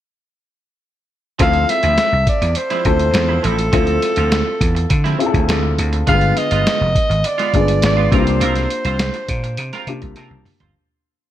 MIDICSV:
0, 0, Header, 1, 7, 480
1, 0, Start_track
1, 0, Key_signature, -1, "minor"
1, 0, Tempo, 584795
1, 1147, Time_signature, 4, 2, 24, 8
1, 9282, End_track
2, 0, Start_track
2, 0, Title_t, "Alto saxophone"
2, 0, Program_c, 0, 65
2, 1165, Note_on_c, 0, 77, 94
2, 1394, Note_on_c, 0, 76, 104
2, 1406, Note_off_c, 0, 77, 0
2, 1869, Note_off_c, 0, 76, 0
2, 1879, Note_on_c, 0, 74, 77
2, 2107, Note_on_c, 0, 72, 94
2, 2120, Note_off_c, 0, 74, 0
2, 2827, Note_on_c, 0, 69, 81
2, 2840, Note_off_c, 0, 72, 0
2, 4263, Note_off_c, 0, 69, 0
2, 4996, Note_on_c, 0, 77, 103
2, 5235, Note_on_c, 0, 75, 86
2, 5248, Note_off_c, 0, 77, 0
2, 5966, Note_on_c, 0, 74, 93
2, 5978, Note_off_c, 0, 75, 0
2, 6435, Note_off_c, 0, 74, 0
2, 6444, Note_on_c, 0, 74, 90
2, 6682, Note_on_c, 0, 72, 80
2, 6694, Note_off_c, 0, 74, 0
2, 8357, Note_off_c, 0, 72, 0
2, 9282, End_track
3, 0, Start_track
3, 0, Title_t, "Grand piano"
3, 0, Program_c, 1, 0
3, 1147, Note_on_c, 1, 64, 59
3, 1148, Note_on_c, 1, 60, 65
3, 1152, Note_on_c, 1, 65, 53
3, 1155, Note_on_c, 1, 69, 66
3, 1302, Control_c, 1, 64, 127
3, 1948, Note_off_c, 1, 60, 0
3, 1948, Note_off_c, 1, 64, 0
3, 1950, Note_off_c, 1, 65, 0
3, 1952, Note_off_c, 1, 69, 0
3, 2339, Note_on_c, 1, 60, 66
3, 2344, Note_on_c, 1, 64, 56
3, 2344, Note_on_c, 1, 65, 56
3, 2349, Note_on_c, 1, 69, 79
3, 2942, Note_off_c, 1, 60, 0
3, 2945, Note_off_c, 1, 64, 0
3, 2945, Note_off_c, 1, 65, 0
3, 2948, Note_off_c, 1, 69, 0
3, 3058, Note_on_c, 1, 60, 62
3, 3062, Note_on_c, 1, 64, 54
3, 3066, Note_on_c, 1, 65, 60
3, 3070, Note_on_c, 1, 69, 68
3, 3862, Note_off_c, 1, 60, 0
3, 3864, Note_off_c, 1, 64, 0
3, 3866, Note_off_c, 1, 65, 0
3, 3868, Note_off_c, 1, 69, 0
3, 4256, Note_on_c, 1, 60, 72
3, 4261, Note_on_c, 1, 64, 74
3, 4263, Note_on_c, 1, 65, 74
3, 4268, Note_on_c, 1, 68, 65
3, 4318, Note_off_c, 1, 68, 0
3, 4319, Note_on_c, 1, 69, 89
3, 4861, Note_off_c, 1, 60, 0
3, 4864, Note_off_c, 1, 64, 0
3, 4864, Note_off_c, 1, 65, 0
3, 4892, Note_off_c, 1, 69, 0
3, 4981, Note_on_c, 1, 56, 54
3, 4989, Control_c, 1, 64, 0
3, 4989, Note_on_c, 1, 50, 61
3, 4992, Note_on_c, 1, 68, 71
3, 4993, Note_on_c, 1, 65, 58
3, 5035, Note_off_c, 1, 56, 0
3, 5037, Note_on_c, 1, 59, 65
3, 5119, Control_c, 1, 64, 127
3, 5790, Note_off_c, 1, 50, 0
3, 5791, Note_off_c, 1, 65, 0
3, 5791, Note_off_c, 1, 68, 0
3, 5814, Note_off_c, 1, 59, 0
3, 6188, Note_on_c, 1, 56, 49
3, 6192, Note_on_c, 1, 65, 55
3, 6193, Note_on_c, 1, 62, 61
3, 6197, Note_on_c, 1, 68, 74
3, 6238, Note_on_c, 1, 59, 70
3, 6239, Note_off_c, 1, 56, 0
3, 6651, Note_off_c, 1, 62, 0
3, 6659, Note_on_c, 1, 58, 68
3, 6663, Note_on_c, 1, 62, 68
3, 6667, Note_on_c, 1, 64, 50
3, 6669, Note_off_c, 1, 65, 0
3, 6669, Note_on_c, 1, 67, 81
3, 6671, Note_off_c, 1, 68, 0
3, 6674, Control_c, 1, 64, 0
3, 6691, Note_off_c, 1, 59, 0
3, 6718, Note_on_c, 1, 65, 64
3, 6719, Note_off_c, 1, 64, 0
3, 6828, Control_c, 1, 64, 127
3, 7467, Note_off_c, 1, 58, 0
3, 7469, Note_off_c, 1, 62, 0
3, 7472, Note_off_c, 1, 67, 0
3, 7497, Note_off_c, 1, 65, 0
3, 8104, Note_on_c, 1, 58, 73
3, 8106, Note_on_c, 1, 62, 72
3, 8110, Note_on_c, 1, 65, 68
3, 8113, Note_on_c, 1, 67, 83
3, 8347, Note_on_c, 1, 81, 59
3, 8710, Note_off_c, 1, 58, 0
3, 8711, Note_off_c, 1, 62, 0
3, 8713, Note_off_c, 1, 65, 0
3, 8715, Note_off_c, 1, 67, 0
3, 8796, Note_off_c, 1, 81, 0
3, 8840, Control_c, 1, 64, 0
3, 9282, End_track
4, 0, Start_track
4, 0, Title_t, "Clean electric guitar"
4, 0, Program_c, 2, 27
4, 1139, Note_on_c, 2, 53, 66
4, 1147, Note_on_c, 2, 60, 68
4, 1157, Note_on_c, 2, 64, 66
4, 1363, Note_off_c, 2, 53, 0
4, 1367, Note_off_c, 2, 60, 0
4, 1372, Note_off_c, 2, 64, 0
4, 1500, Note_on_c, 2, 64, 48
4, 1506, Note_on_c, 2, 60, 50
4, 1514, Note_on_c, 2, 53, 44
4, 1611, Note_off_c, 2, 64, 0
4, 1614, Note_off_c, 2, 53, 0
4, 1614, Note_off_c, 2, 60, 0
4, 2219, Note_on_c, 2, 64, 77
4, 2227, Note_on_c, 2, 60, 62
4, 2237, Note_on_c, 2, 53, 64
4, 2330, Note_off_c, 2, 53, 0
4, 2339, Note_off_c, 2, 60, 0
4, 2343, Note_off_c, 2, 64, 0
4, 2697, Note_on_c, 2, 64, 59
4, 2707, Note_on_c, 2, 60, 52
4, 2716, Note_on_c, 2, 53, 42
4, 2803, Note_off_c, 2, 53, 0
4, 2808, Note_off_c, 2, 64, 0
4, 2813, Note_off_c, 2, 60, 0
4, 2813, Note_on_c, 2, 53, 74
4, 2822, Note_on_c, 2, 60, 81
4, 2828, Note_on_c, 2, 64, 86
4, 2928, Note_off_c, 2, 64, 0
4, 2938, Note_off_c, 2, 60, 0
4, 2956, Note_off_c, 2, 53, 0
4, 3054, Note_on_c, 2, 53, 69
4, 3063, Note_on_c, 2, 60, 79
4, 3067, Note_on_c, 2, 64, 84
4, 3278, Note_off_c, 2, 53, 0
4, 3283, Note_off_c, 2, 60, 0
4, 3285, Note_off_c, 2, 64, 0
4, 3419, Note_on_c, 2, 65, 55
4, 3427, Note_on_c, 2, 60, 56
4, 3435, Note_on_c, 2, 53, 45
4, 3528, Note_off_c, 2, 65, 0
4, 3531, Note_off_c, 2, 53, 0
4, 3533, Note_off_c, 2, 60, 0
4, 4138, Note_on_c, 2, 64, 73
4, 4148, Note_on_c, 2, 60, 65
4, 4154, Note_on_c, 2, 53, 61
4, 4252, Note_off_c, 2, 53, 0
4, 4258, Note_off_c, 2, 60, 0
4, 4265, Note_off_c, 2, 64, 0
4, 4981, Note_on_c, 2, 56, 71
4, 4991, Note_on_c, 2, 59, 70
4, 4995, Note_on_c, 2, 65, 81
4, 5202, Note_off_c, 2, 56, 0
4, 5207, Note_off_c, 2, 59, 0
4, 5209, Note_off_c, 2, 65, 0
4, 5343, Note_on_c, 2, 65, 62
4, 5352, Note_on_c, 2, 59, 55
4, 5356, Note_on_c, 2, 56, 50
4, 5451, Note_off_c, 2, 65, 0
4, 5452, Note_off_c, 2, 56, 0
4, 5455, Note_off_c, 2, 59, 0
4, 6058, Note_on_c, 2, 65, 79
4, 6070, Note_on_c, 2, 59, 80
4, 6073, Note_on_c, 2, 56, 67
4, 6170, Note_off_c, 2, 56, 0
4, 6175, Note_off_c, 2, 59, 0
4, 6181, Note_off_c, 2, 65, 0
4, 6539, Note_on_c, 2, 65, 57
4, 6548, Note_on_c, 2, 59, 48
4, 6555, Note_on_c, 2, 56, 44
4, 6650, Note_off_c, 2, 65, 0
4, 6655, Note_off_c, 2, 59, 0
4, 6658, Note_off_c, 2, 56, 0
4, 6660, Note_on_c, 2, 60, 83
4, 6667, Note_on_c, 2, 65, 76
4, 6675, Note_on_c, 2, 70, 77
4, 6770, Note_off_c, 2, 70, 0
4, 6779, Note_off_c, 2, 65, 0
4, 6801, Note_off_c, 2, 60, 0
4, 6899, Note_on_c, 2, 60, 83
4, 6907, Note_on_c, 2, 65, 74
4, 6915, Note_on_c, 2, 70, 75
4, 7123, Note_off_c, 2, 60, 0
4, 7127, Note_off_c, 2, 65, 0
4, 7131, Note_off_c, 2, 70, 0
4, 7265, Note_on_c, 2, 72, 68
4, 7274, Note_on_c, 2, 65, 52
4, 7282, Note_on_c, 2, 60, 48
4, 7374, Note_off_c, 2, 72, 0
4, 7376, Note_off_c, 2, 60, 0
4, 7378, Note_off_c, 2, 65, 0
4, 7987, Note_on_c, 2, 70, 74
4, 7997, Note_on_c, 2, 65, 66
4, 8004, Note_on_c, 2, 60, 54
4, 8096, Note_off_c, 2, 60, 0
4, 8103, Note_off_c, 2, 65, 0
4, 8106, Note_off_c, 2, 70, 0
4, 8345, Note_on_c, 2, 60, 78
4, 8356, Note_on_c, 2, 65, 80
4, 8362, Note_on_c, 2, 70, 81
4, 8456, Note_off_c, 2, 70, 0
4, 8469, Note_off_c, 2, 65, 0
4, 8486, Note_off_c, 2, 60, 0
4, 8703, Note_on_c, 2, 72, 66
4, 8711, Note_on_c, 2, 65, 57
4, 8720, Note_on_c, 2, 60, 49
4, 8815, Note_off_c, 2, 72, 0
4, 8819, Note_off_c, 2, 65, 0
4, 8823, Note_off_c, 2, 60, 0
4, 9282, End_track
5, 0, Start_track
5, 0, Title_t, "Slap bass"
5, 0, Program_c, 3, 36
5, 1145, Note_on_c, 3, 38, 88
5, 1340, Note_off_c, 3, 38, 0
5, 1505, Note_on_c, 3, 38, 85
5, 1603, Note_off_c, 3, 38, 0
5, 1745, Note_on_c, 3, 36, 80
5, 1842, Note_off_c, 3, 36, 0
5, 1983, Note_on_c, 3, 40, 78
5, 2081, Note_off_c, 3, 40, 0
5, 2340, Note_on_c, 3, 38, 80
5, 2536, Note_off_c, 3, 38, 0
5, 2576, Note_on_c, 3, 40, 72
5, 2774, Note_off_c, 3, 40, 0
5, 2827, Note_on_c, 3, 33, 72
5, 3020, Note_off_c, 3, 33, 0
5, 3060, Note_on_c, 3, 38, 78
5, 3255, Note_off_c, 3, 38, 0
5, 3424, Note_on_c, 3, 38, 84
5, 3618, Note_off_c, 3, 38, 0
5, 3780, Note_on_c, 3, 40, 82
5, 3976, Note_off_c, 3, 40, 0
5, 4024, Note_on_c, 3, 50, 80
5, 4218, Note_off_c, 3, 50, 0
5, 4381, Note_on_c, 3, 38, 63
5, 4479, Note_off_c, 3, 38, 0
5, 4500, Note_on_c, 3, 38, 83
5, 4696, Note_off_c, 3, 38, 0
5, 4748, Note_on_c, 3, 38, 80
5, 4940, Note_off_c, 3, 38, 0
5, 4983, Note_on_c, 3, 31, 85
5, 5177, Note_off_c, 3, 31, 0
5, 5347, Note_on_c, 3, 31, 88
5, 5442, Note_off_c, 3, 31, 0
5, 5589, Note_on_c, 3, 29, 73
5, 5684, Note_off_c, 3, 29, 0
5, 5826, Note_on_c, 3, 32, 86
5, 5922, Note_off_c, 3, 32, 0
5, 6185, Note_on_c, 3, 31, 79
5, 6380, Note_off_c, 3, 31, 0
5, 6430, Note_on_c, 3, 32, 72
5, 6623, Note_off_c, 3, 32, 0
5, 6662, Note_on_c, 3, 36, 85
5, 6858, Note_off_c, 3, 36, 0
5, 6906, Note_on_c, 3, 36, 81
5, 7101, Note_off_c, 3, 36, 0
5, 7262, Note_on_c, 3, 36, 93
5, 7459, Note_off_c, 3, 36, 0
5, 7622, Note_on_c, 3, 46, 81
5, 7863, Note_off_c, 3, 46, 0
5, 7863, Note_on_c, 3, 48, 74
5, 7963, Note_off_c, 3, 48, 0
5, 8101, Note_on_c, 3, 48, 79
5, 8202, Note_off_c, 3, 48, 0
5, 8222, Note_on_c, 3, 36, 77
5, 8322, Note_off_c, 3, 36, 0
5, 8333, Note_on_c, 3, 48, 88
5, 8437, Note_off_c, 3, 48, 0
5, 8457, Note_on_c, 3, 36, 73
5, 8560, Note_off_c, 3, 36, 0
5, 8703, Note_on_c, 3, 31, 80
5, 8803, Note_off_c, 3, 31, 0
5, 9282, End_track
6, 0, Start_track
6, 0, Title_t, "Muted clean electric guitar strokes"
6, 1383, Note_on_c, 9, 29, 48
6, 1465, Note_off_c, 9, 29, 0
6, 1624, Note_on_c, 9, 29, 37
6, 1706, Note_off_c, 9, 29, 0
6, 1741, Note_on_c, 9, 29, 39
6, 1823, Note_off_c, 9, 29, 0
6, 1984, Note_on_c, 9, 29, 39
6, 2066, Note_off_c, 9, 29, 0
6, 2107, Note_on_c, 9, 29, 38
6, 2189, Note_off_c, 9, 29, 0
6, 2340, Note_on_c, 9, 29, 42
6, 2422, Note_off_c, 9, 29, 0
6, 2458, Note_on_c, 9, 29, 40
6, 2540, Note_off_c, 9, 29, 0
6, 2577, Note_on_c, 9, 29, 33
6, 2659, Note_off_c, 9, 29, 0
6, 2938, Note_on_c, 9, 29, 39
6, 3020, Note_off_c, 9, 29, 0
6, 3300, Note_on_c, 9, 29, 36
6, 3382, Note_off_c, 9, 29, 0
6, 3540, Note_on_c, 9, 29, 41
6, 3622, Note_off_c, 9, 29, 0
6, 3659, Note_on_c, 9, 29, 38
6, 3741, Note_off_c, 9, 29, 0
6, 3898, Note_on_c, 9, 29, 46
6, 3980, Note_off_c, 9, 29, 0
6, 4019, Note_on_c, 9, 29, 40
6, 4101, Note_off_c, 9, 29, 0
6, 4262, Note_on_c, 9, 29, 38
6, 4344, Note_off_c, 9, 29, 0
6, 4385, Note_on_c, 9, 29, 47
6, 4467, Note_off_c, 9, 29, 0
6, 4501, Note_on_c, 9, 29, 40
6, 4583, Note_off_c, 9, 29, 0
6, 4619, Note_on_c, 9, 29, 38
6, 4701, Note_off_c, 9, 29, 0
6, 4865, Note_on_c, 9, 29, 42
6, 4947, Note_off_c, 9, 29, 0
6, 5222, Note_on_c, 9, 29, 44
6, 5304, Note_off_c, 9, 29, 0
6, 5462, Note_on_c, 9, 29, 34
6, 5544, Note_off_c, 9, 29, 0
6, 5581, Note_on_c, 9, 29, 43
6, 5663, Note_off_c, 9, 29, 0
6, 5825, Note_on_c, 9, 29, 46
6, 5907, Note_off_c, 9, 29, 0
6, 5946, Note_on_c, 9, 29, 35
6, 6028, Note_off_c, 9, 29, 0
6, 6179, Note_on_c, 9, 29, 46
6, 6261, Note_off_c, 9, 29, 0
6, 6301, Note_on_c, 9, 29, 39
6, 6383, Note_off_c, 9, 29, 0
6, 6422, Note_on_c, 9, 29, 35
6, 6505, Note_off_c, 9, 29, 0
6, 6780, Note_on_c, 9, 29, 46
6, 6862, Note_off_c, 9, 29, 0
6, 7143, Note_on_c, 9, 29, 36
6, 7225, Note_off_c, 9, 29, 0
6, 7385, Note_on_c, 9, 29, 43
6, 7467, Note_off_c, 9, 29, 0
6, 7506, Note_on_c, 9, 29, 38
6, 7589, Note_off_c, 9, 29, 0
6, 7746, Note_on_c, 9, 29, 45
6, 7828, Note_off_c, 9, 29, 0
6, 7870, Note_on_c, 9, 29, 43
6, 7952, Note_off_c, 9, 29, 0
6, 8106, Note_on_c, 9, 29, 43
6, 8188, Note_off_c, 9, 29, 0
6, 8228, Note_on_c, 9, 29, 33
6, 8310, Note_off_c, 9, 29, 0
6, 8466, Note_on_c, 9, 29, 33
6, 8548, Note_off_c, 9, 29, 0
6, 8585, Note_on_c, 9, 29, 37
6, 8667, Note_off_c, 9, 29, 0
6, 9282, End_track
7, 0, Start_track
7, 0, Title_t, "Drums"
7, 1144, Note_on_c, 9, 42, 77
7, 1146, Note_on_c, 9, 36, 89
7, 1226, Note_off_c, 9, 42, 0
7, 1228, Note_off_c, 9, 36, 0
7, 1260, Note_on_c, 9, 42, 32
7, 1342, Note_off_c, 9, 42, 0
7, 1388, Note_on_c, 9, 42, 69
7, 1392, Note_on_c, 9, 38, 31
7, 1470, Note_off_c, 9, 42, 0
7, 1474, Note_off_c, 9, 38, 0
7, 1501, Note_on_c, 9, 42, 42
7, 1583, Note_off_c, 9, 42, 0
7, 1622, Note_on_c, 9, 42, 83
7, 1624, Note_on_c, 9, 38, 91
7, 1704, Note_off_c, 9, 42, 0
7, 1706, Note_off_c, 9, 38, 0
7, 1862, Note_on_c, 9, 36, 85
7, 1862, Note_on_c, 9, 42, 87
7, 1944, Note_off_c, 9, 36, 0
7, 1945, Note_off_c, 9, 42, 0
7, 1986, Note_on_c, 9, 42, 51
7, 2068, Note_off_c, 9, 42, 0
7, 2093, Note_on_c, 9, 42, 77
7, 2176, Note_off_c, 9, 42, 0
7, 2219, Note_on_c, 9, 42, 33
7, 2222, Note_on_c, 9, 38, 32
7, 2301, Note_off_c, 9, 42, 0
7, 2305, Note_off_c, 9, 38, 0
7, 2339, Note_on_c, 9, 42, 56
7, 2340, Note_on_c, 9, 36, 78
7, 2421, Note_off_c, 9, 42, 0
7, 2423, Note_off_c, 9, 36, 0
7, 2458, Note_on_c, 9, 42, 42
7, 2540, Note_off_c, 9, 42, 0
7, 2575, Note_on_c, 9, 42, 80
7, 2585, Note_on_c, 9, 38, 97
7, 2657, Note_off_c, 9, 42, 0
7, 2667, Note_off_c, 9, 38, 0
7, 2823, Note_on_c, 9, 42, 58
7, 2905, Note_off_c, 9, 42, 0
7, 2943, Note_on_c, 9, 42, 46
7, 3025, Note_off_c, 9, 42, 0
7, 3059, Note_on_c, 9, 42, 82
7, 3062, Note_on_c, 9, 36, 84
7, 3142, Note_off_c, 9, 42, 0
7, 3144, Note_off_c, 9, 36, 0
7, 3176, Note_on_c, 9, 42, 34
7, 3258, Note_off_c, 9, 42, 0
7, 3303, Note_on_c, 9, 42, 71
7, 3308, Note_on_c, 9, 38, 33
7, 3385, Note_off_c, 9, 42, 0
7, 3390, Note_off_c, 9, 38, 0
7, 3415, Note_on_c, 9, 42, 49
7, 3497, Note_off_c, 9, 42, 0
7, 3544, Note_on_c, 9, 42, 75
7, 3546, Note_on_c, 9, 38, 97
7, 3626, Note_off_c, 9, 42, 0
7, 3628, Note_off_c, 9, 38, 0
7, 3782, Note_on_c, 9, 36, 91
7, 3786, Note_on_c, 9, 42, 82
7, 3864, Note_off_c, 9, 36, 0
7, 3868, Note_off_c, 9, 42, 0
7, 3910, Note_on_c, 9, 42, 49
7, 3993, Note_off_c, 9, 42, 0
7, 4022, Note_on_c, 9, 42, 82
7, 4025, Note_on_c, 9, 36, 87
7, 4104, Note_off_c, 9, 42, 0
7, 4107, Note_off_c, 9, 36, 0
7, 4150, Note_on_c, 9, 42, 32
7, 4154, Note_on_c, 9, 38, 36
7, 4232, Note_off_c, 9, 42, 0
7, 4236, Note_off_c, 9, 38, 0
7, 4271, Note_on_c, 9, 42, 59
7, 4353, Note_off_c, 9, 42, 0
7, 4384, Note_on_c, 9, 36, 68
7, 4388, Note_on_c, 9, 42, 39
7, 4466, Note_off_c, 9, 36, 0
7, 4470, Note_off_c, 9, 42, 0
7, 4504, Note_on_c, 9, 42, 80
7, 4514, Note_on_c, 9, 38, 97
7, 4586, Note_off_c, 9, 42, 0
7, 4596, Note_off_c, 9, 38, 0
7, 4748, Note_on_c, 9, 42, 64
7, 4830, Note_off_c, 9, 42, 0
7, 4865, Note_on_c, 9, 42, 40
7, 4947, Note_off_c, 9, 42, 0
7, 4983, Note_on_c, 9, 42, 72
7, 4985, Note_on_c, 9, 36, 94
7, 5065, Note_off_c, 9, 42, 0
7, 5067, Note_off_c, 9, 36, 0
7, 5099, Note_on_c, 9, 42, 29
7, 5181, Note_off_c, 9, 42, 0
7, 5226, Note_on_c, 9, 42, 72
7, 5231, Note_on_c, 9, 38, 32
7, 5308, Note_off_c, 9, 42, 0
7, 5313, Note_off_c, 9, 38, 0
7, 5343, Note_on_c, 9, 42, 47
7, 5425, Note_off_c, 9, 42, 0
7, 5472, Note_on_c, 9, 42, 86
7, 5474, Note_on_c, 9, 38, 106
7, 5554, Note_off_c, 9, 42, 0
7, 5556, Note_off_c, 9, 38, 0
7, 5707, Note_on_c, 9, 36, 92
7, 5710, Note_on_c, 9, 42, 85
7, 5789, Note_off_c, 9, 36, 0
7, 5792, Note_off_c, 9, 42, 0
7, 5835, Note_on_c, 9, 42, 45
7, 5917, Note_off_c, 9, 42, 0
7, 5944, Note_on_c, 9, 42, 80
7, 6026, Note_off_c, 9, 42, 0
7, 6068, Note_on_c, 9, 42, 35
7, 6072, Note_on_c, 9, 38, 34
7, 6150, Note_off_c, 9, 42, 0
7, 6154, Note_off_c, 9, 38, 0
7, 6185, Note_on_c, 9, 36, 75
7, 6186, Note_on_c, 9, 42, 60
7, 6267, Note_off_c, 9, 36, 0
7, 6268, Note_off_c, 9, 42, 0
7, 6306, Note_on_c, 9, 42, 49
7, 6388, Note_off_c, 9, 42, 0
7, 6422, Note_on_c, 9, 42, 81
7, 6431, Note_on_c, 9, 38, 107
7, 6504, Note_off_c, 9, 42, 0
7, 6514, Note_off_c, 9, 38, 0
7, 6664, Note_on_c, 9, 36, 94
7, 6667, Note_on_c, 9, 42, 60
7, 6746, Note_off_c, 9, 36, 0
7, 6749, Note_off_c, 9, 42, 0
7, 6787, Note_on_c, 9, 42, 44
7, 6869, Note_off_c, 9, 42, 0
7, 6904, Note_on_c, 9, 42, 85
7, 6987, Note_off_c, 9, 42, 0
7, 7022, Note_on_c, 9, 42, 36
7, 7033, Note_on_c, 9, 38, 39
7, 7104, Note_off_c, 9, 42, 0
7, 7115, Note_off_c, 9, 38, 0
7, 7144, Note_on_c, 9, 42, 66
7, 7227, Note_off_c, 9, 42, 0
7, 7261, Note_on_c, 9, 42, 44
7, 7344, Note_off_c, 9, 42, 0
7, 7381, Note_on_c, 9, 42, 82
7, 7384, Note_on_c, 9, 38, 102
7, 7463, Note_off_c, 9, 42, 0
7, 7466, Note_off_c, 9, 38, 0
7, 7500, Note_on_c, 9, 42, 32
7, 7582, Note_off_c, 9, 42, 0
7, 7621, Note_on_c, 9, 42, 82
7, 7622, Note_on_c, 9, 36, 88
7, 7703, Note_off_c, 9, 42, 0
7, 7704, Note_off_c, 9, 36, 0
7, 7747, Note_on_c, 9, 42, 48
7, 7829, Note_off_c, 9, 42, 0
7, 7859, Note_on_c, 9, 42, 78
7, 7941, Note_off_c, 9, 42, 0
7, 7986, Note_on_c, 9, 42, 34
7, 7989, Note_on_c, 9, 38, 38
7, 8068, Note_off_c, 9, 42, 0
7, 8072, Note_off_c, 9, 38, 0
7, 8103, Note_on_c, 9, 42, 57
7, 8185, Note_off_c, 9, 42, 0
7, 8223, Note_on_c, 9, 36, 86
7, 8223, Note_on_c, 9, 42, 45
7, 8305, Note_off_c, 9, 36, 0
7, 8305, Note_off_c, 9, 42, 0
7, 8338, Note_on_c, 9, 42, 74
7, 8347, Note_on_c, 9, 38, 55
7, 8420, Note_off_c, 9, 42, 0
7, 8429, Note_off_c, 9, 38, 0
7, 8464, Note_on_c, 9, 48, 51
7, 8546, Note_off_c, 9, 48, 0
7, 8581, Note_on_c, 9, 45, 69
7, 8586, Note_on_c, 9, 46, 61
7, 8663, Note_off_c, 9, 45, 0
7, 8668, Note_off_c, 9, 46, 0
7, 8702, Note_on_c, 9, 42, 45
7, 8702, Note_on_c, 9, 43, 75
7, 8784, Note_off_c, 9, 42, 0
7, 8784, Note_off_c, 9, 43, 0
7, 9282, End_track
0, 0, End_of_file